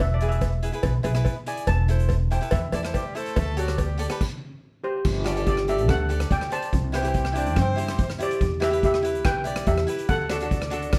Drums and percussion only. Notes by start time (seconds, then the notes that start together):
0.00 cowbell
0.21 closed hi-hat
0.31 closed hi-hat
0.41 kick, closed hi-hat, cowbell
0.63 closed hi-hat
0.73 closed hi-hat
0.83 kick, closed hi-hat, cowbell
1.04 closed hi-hat, cowbell
1.15 cross-stick, closed hi-hat
1.25 kick, closed hi-hat, cowbell
1.46 closed hi-hat
1.57 closed hi-hat
1.67 kick, closed hi-hat, cowbell
1.89 closed hi-hat
2.00 closed hi-hat
2.09 kick, closed hi-hat, cowbell
2.31 closed hi-hat
2.42 closed hi-hat
2.51 kick, closed hi-hat, cowbell
2.72 closed hi-hat, cowbell
2.85 cross-stick, closed hi-hat
2.94 kick, closed hi-hat, cowbell
3.16 closed hi-hat
3.26 closed hi-hat
3.36 kick, closed hi-hat, cowbell
3.57 closed hi-hat
3.68 cross-stick, closed hi-hat
3.78 kick, closed hi-hat, cowbell
3.99 closed hi-hat
4.10 cross-stick, closed hi-hat
4.21 kick, crash
5.05 kick, crash
5.26 cross-stick, closed hi-hat
5.37 closed hi-hat
5.46 kick, closed hi-hat
5.57 cross-stick
5.68 closed hi-hat
5.78 closed hi-hat
5.89 kick, cross-stick, closed hi-hat
6.10 closed hi-hat
6.20 cross-stick, closed hi-hat
6.31 kick, closed hi-hat
6.41 cross-stick
6.52 closed hi-hat
6.62 closed hi-hat
6.73 kick, closed hi-hat
6.94 cross-stick, closed hi-hat
7.05 closed hi-hat
7.14 kick, closed hi-hat
7.25 cross-stick
7.35 closed hi-hat
7.46 closed hi-hat
7.56 kick, cross-stick, closed hi-hat
7.78 closed hi-hat
7.88 cross-stick, closed hi-hat
7.98 kick, closed hi-hat
8.10 cross-stick
8.20 closed hi-hat
8.31 closed hi-hat
8.41 kick, closed hi-hat
8.62 cross-stick, closed hi-hat
8.73 closed hi-hat
8.83 kick, closed hi-hat
8.94 cross-stick
9.04 closed hi-hat
9.15 closed hi-hat
9.25 kick, cross-stick, closed hi-hat
9.45 closed hi-hat
9.56 cross-stick, closed hi-hat
9.66 kick, closed hi-hat
9.78 cross-stick
9.88 closed hi-hat
9.98 closed hi-hat
10.09 kick, closed hi-hat
10.30 cross-stick, closed hi-hat
10.40 closed hi-hat
10.51 kick, closed hi-hat
10.62 cross-stick
10.71 closed hi-hat
10.82 closed hi-hat
10.93 kick, cross-stick, closed hi-hat